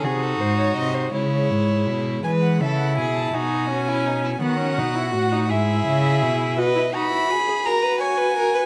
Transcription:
<<
  \new Staff \with { instrumentName = "Violin" } { \time 6/8 \key cis \phrygian \tempo 4. = 55 gis'16 a'16 bis'16 cis''16 dis''16 bis'16 cis''4. | \key e \major gis''16 fis''16 e''16 fis''16 gis''16 a''16 gis''4. | fis''4. e''4. | dis''8 b''4 ais''8 gis''4 | }
  \new Staff \with { instrumentName = "Violin" } { \time 6/8 \key cis \phrygian fis'4. e'4. | \key e \major b'8 a'8 gis'8 fis'8. e'16 dis'16 e'16 | fis'4. gis'4. | b'8 fis'8 gis'8 ais'16 b'16 cis''16 b'16 ais'16 b'16 | }
  \new Staff \with { instrumentName = "Viola" } { \time 6/8 \key cis \phrygian dis'4. gis4. | \key e \major gis8 e'4 dis'8 cis'4 | b16 cis'16 dis'16 e'16 fis'16 dis'16 e'4. | fis'16 e'16 dis'16 e'16 fis'16 gis'16 fis'4. | }
  \new Staff \with { instrumentName = "Cello" } { \clef bass \time 6/8 \key cis \phrygian bis,8 gis,8 bis,8 cis8 gis,8 b,8 | \key e \major e8 cis8 b,8 b,4. | dis8 b,8 a,8 gis,8 cis8 b,8 | r2. | }
>>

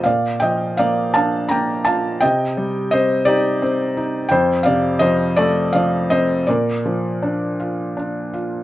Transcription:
<<
  \new Staff \with { instrumentName = "Felt piano" } { \time 6/8 \key bes \major \tempo 4. = 55 <d'' f''>8 <ees'' g''>8 <d'' f''>8 <f'' a''>8 <g'' bes''>8 <f'' a''>8 | <ees'' g''>4 <c'' ees''>8 <g' d''>4 r8 | <c'' g''>8 <d'' f''>8 <c'' ees''>8 <a' d''>8 <d'' f''>8 <c'' ees''>8 | <bes' d''>2~ <bes' d''>8 r8 | }
  \new Staff \with { instrumentName = "Felt piano" } { \time 6/8 \key bes \major bes,8 f8 bes8 d'8 bes8 f'8 | c8 g8 c'8 ees'8 c'8 ees'8 | f,8 c8 f8 a8 f8 c'8 | bes,8 f8 d'8 f'8 d'8 f'8 | }
>>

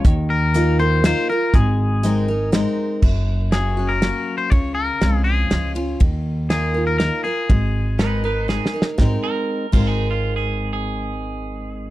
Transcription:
<<
  \new Staff \with { instrumentName = "Clean electric guitar" } { \time 3/4 \key aes \mixolydian \tempo 4 = 121 r8 bes'4 c''8 c''8 bes'8 | aes'2 r4 | r4 aes'8. bes'4 c''16 | des''8 bes'4 aes'4 r8 |
r4 aes'8. bes'16 bes'8 aes'8~ | aes'2 r4 | r2. | r2. | }
  \new Staff \with { instrumentName = "Clean electric guitar" } { \time 3/4 \key aes \mixolydian des''16 r2 r8. | r2. | r2. | r2. |
r2. | r4 <ees' ces''>8 <ees' ces''>8 aes'8. r16 | r8 bes'4 f'16 aes'8 f'8 aes'16~ | aes'8 aes'2~ aes'8 | }
  \new Staff \with { instrumentName = "Steel-string acoustic guitar" } { \time 3/4 \key aes \mixolydian << { r4 <bes ees' f' bes'>8 <f' bes'>8 <bes ees' f' bes'>8 <f' bes'>8 | r4 <aes c' ees' bes'>8 <ees' bes'>8 <aes c' ees' bes'>4 | r4 <ges bes des' ges'>8 <des' ges'>8 <ges bes des' ges'>4 | r4 <f aes des' f'>4 <f aes des' f'>8 <des' f'>8 |
r4 <bes ees' f' bes'>8 <f' bes'>8 <bes ees' f' bes'>8 <f' bes'>8 | r4 <aes c' ees' bes'>8 <ees' bes'>8 <aes c' ees' bes'>8 <ees' bes'>8 | <aes c' ees' bes'>8 r4 <aes c' ees' bes'>4.~ | <aes c' ees' bes'>2. | } \\ { ees2 r4 | aes2 r4 | ges,2 r4 | des2 r4 |
ees2 r4 | aes2 r4 | r2. | r2. | } >> }
  \new Staff \with { instrumentName = "Upright bass" } { \clef bass \time 3/4 \key aes \mixolydian ees,2. | aes,,2. | ges,,2. | des,4 c,4 des,4 |
ees,2. | aes,,2. | aes,,8 r4 aes,,4.~ | aes,,2. | }
  \new DrumStaff \with { instrumentName = "Drums" } \drummode { \time 3/4 <hh bd>4 hh4 <hh sn>4 | <hh bd>4 hh4 <hh sn>4 | <cymc bd>4 <cymr sn>4 <cymr sn>4 | <bd cymr>4 <cymr sn>4 <cymr sn>8 cymr8 |
<bd cymr>4 <cymr sn>4 <cymr sn>4 | <bd cymr>4 <cymr sn>4 \tuplet 3/2 { sn8 sn8 sn8 } | <bd sn>4 r8 <cymc bd>8 r4 | r4 r4 r4 | }
>>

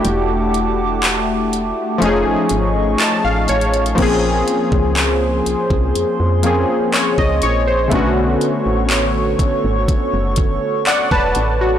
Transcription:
<<
  \new Staff \with { instrumentName = "Analog synth pad" } { \time 4/4 \key ais \phrygian \tempo 4 = 61 << { <fis'' a'' d'''>2 <ees'' cis'''>2 | <gis' bis' bis''>1 | <a' cis'' cis'''>1 | } \\ { a1 | r1 | r1 | } >> }
  \new Staff \with { instrumentName = "Synth keys" } { \time 4/4 \key ais \phrygian << { r2. a''16 f''16 cis''8 | r2. cis''16 dis''16 cis''16 bis'16~ | bis'16 r2 r8. <d'' fis''>16 <b' a''>8 fis'16 | } \\ { <a d' e' fis' g'>2 <f a cis' ees' gis'>2 | <eis ais bis cis' gis'>2~ <eis ais bis cis' gis'>8 <eis ais bis cis' gis'>4. | <cis d a b cis' fis'>1 | } >> }
  \new Staff \with { instrumentName = "FM bass" } { \clef bass \time 4/4 \key ais \phrygian e,,4.~ e,,16 r16 f,,16 gis,,16 gis,,8 r16 a,,16 a,,8 | ais,,8 r16 cis,8. bis,,16 bis,,16 eis,16 eis,8 r8 cis,16 ais,,8 | b,,8 r16 a,,8. gis,,16 gis,,16 fis,,16 fis,,8 r8 e,,16 a,,8 | }
  \new DrumStaff \with { instrumentName = "Drums" } \drummode { \time 4/4 hh8 hh8 <hc hh>8 hh8 hh8 hh8 <hc hh>8 <hh hho>32 hh32 hh32 hh32 | <cymc hh bd>8 hh16 bd16 <hc hh>8 hh16 bd16 hh8 hh8 <hc hh>16 bd16 hh8 | <hh bd>8 hh8 <hc hh>8 <hh bd>8 <hh bd>8 <hh bd>8 <hc hh>16 bd16 hh8 | }
>>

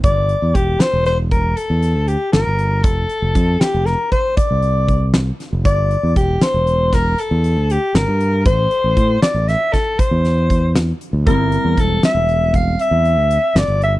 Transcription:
<<
  \new Staff \with { instrumentName = "Soprano saxophone" } { \time 11/8 \key g \dorian \tempo 4 = 118 d''4 g'8 c''8 c''8 bes'8 a'4 g'8 bes'4 | a'4. g'8 bes'8 c''8 d''4. r4 | d''4 g'8 c''4 bes'8 a'4 g'8 bes'4 | c''4. d''8 e''8 a'8 c''4. r4 |
bes'4 a'8 e''4 f''8 e''4. d''8 e''8 | }
  \new Staff \with { instrumentName = "Hollow-body jazz guitar" } { \time 11/8 \key g \dorian r1 r4. | r1 r4. | r1 r4. | r1 r4. |
<g c' e'>1~ <g c' e'>4. | }
  \new Staff \with { instrumentName = "Fingered electric bass" } { \clef bass \time 11/8 \key g \dorian g,,8. e,16 e,,8 r16 e,,4. e,8 d,8 r16 g,,16 g,,8. | f,,8 r16 f,,16 f,8 r16 f,,8 r4 c,2 f,,16 | g,,8. e,16 e,,8 r16 e,,4. e,8 d,8 r16 g,,16 g,8. | a,,8 r16 a,,16 a,8 r16 a,,8 r4 e,2 d,16 |
g,,8. e,16 e,,8 r16 e,,4. e,8 d,8 r16 g,,16 g,,8. | }
  \new DrumStaff \with { instrumentName = "Drums" } \drummode { \time 11/8 <hh bd>8 hh8 <hh bd>8 <hh sn>8 <hh sn>8 <hh bd>8 hh8 hh8 hh8 <hh sn>8 hh8 | <hh bd>8 hh8 <hh bd>8 <hh sn>8 <hh sn>8 <hh bd>8 <hh bd>8 hh8 <hh bd>8 <hh sn>8 <hh sn>8 | <hh bd>8 hh8 <hh bd>8 <hh sn>8 hh8 <hh bd sn>8 hh8 hh8 hh8 <hh sn>8 hh8 | <hh bd>8 hh8 <hh bd>8 <hh sn>8 <hh sn>8 <hh bd sn>8 <hh bd>8 <hh sn>8 <hh bd>8 <hh sn>8 hh8 |
<hh bd>8 hh8 <hh bd>8 <hh sn>8 hh8 <hh bd>8 hh8 hh8 hh8 <hh sn>8 hh8 | }
>>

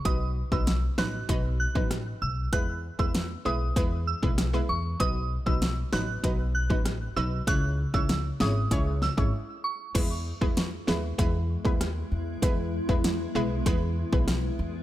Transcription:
<<
  \new Staff \with { instrumentName = "Synth bell" } { \time 4/4 \key e \major \tempo 4 = 97 dis'''16 r8 e'''8 r16 fis'''8 r8 fis'''16 r8. e'''16 r16 | fis'''16 r8 e'''8 r16 dis'''8 r8 e'''16 r8. cis'''16 r16 | dis'''16 r8 e'''8 r16 fis'''8 r8 fis'''16 r8. e'''16 r16 | fis'''16 r8 e'''8 r16 dis'''8 r8 e'''16 r8. cis'''16 r16 |
r1 | r1 | }
  \new Staff \with { instrumentName = "Synth pluck" } { \time 4/4 \key e \major <fis b dis' b'>16 r8 <fis b dis' b'>16 r8 <fis b dis' b'>16 r16 <fis b dis' b'>16 r8 <fis b dis' b'>16 r4 | <gis b e' b'>16 r8 <gis b e' b'>16 r8 <gis b e' b'>16 r16 <gis b e' b'>16 r8 <gis b e' b'>16 r16 <gis b e' b'>16 r8 | <fis b dis' b'>16 r8 <fis b dis' b'>16 r8 <fis b dis' b'>16 r16 <fis b dis' b'>16 r8 <fis b dis' b'>16 r8 <fis b dis' b'>16 r16 | <gis cis' e' cis''>16 r8 <gis cis' e' cis''>16 r8 <gis cis' e' cis''>16 r16 <gis cis' e' cis''>16 r8 <gis cis' e' cis''>16 r4 |
<gis b e' b'>16 r8 <gis b e' b'>16 r8 <gis b e' b'>16 r16 <gis b e' b'>16 r8 <gis b e' b'>16 r4 | <gis b e' b'>16 r8 <gis b e' b'>16 r8 <gis b e' b'>16 r16 <gis b e' b'>16 r8 <gis b e' b'>16 r4 | }
  \new Staff \with { instrumentName = "Ambient pad" } { \time 4/4 \key e \major r1 | r1 | r1 | r1 |
<gis b e'>1~ | <gis b e'>1 | }
  \new Staff \with { instrumentName = "Upright bass" } { \clef bass \time 4/4 \key e \major b,,8. b,,8. a,,8 b,,8. a,,8. b,,8 | e,8. e,8. b,,8 e,8. b,,8. e,8 | b,,8. b,,8. a,,8 b,,8. a,,8. b,,8 | cis,8. cis,8. gis,,8 cis,8. gis,,16 r4 |
e,8. e,8. dis,8 e,8. dis,8. e,8 | e,8. e,8. b,,8 e,8. b,,8. e,8 | }
  \new DrumStaff \with { instrumentName = "Drums" } \drummode { \time 4/4 <hh bd>8. bd16 <hh sn>8 sn8 <hh bd>8. bd16 <hh ss sn>4 | <hh bd>8. bd16 <hh sn>4 <hh bd>8. bd16 <hh ss sn>4 | <hh bd>8. bd16 <hh sn>8 sn8 <hh bd>8. bd16 <hh ss sn>4 | <hh bd>8. bd16 <hh sn>8 sn8 <hh bd>8 sn16 bd16 r4 |
<cymc hh bd>8. bd16 <hh sn>8 sn8 <hh bd>8. bd16 <hh ss sn>4 | <hh bd>8. bd16 <hh sn>4 <hh bd>8. bd16 <hh ss sn>4 | }
>>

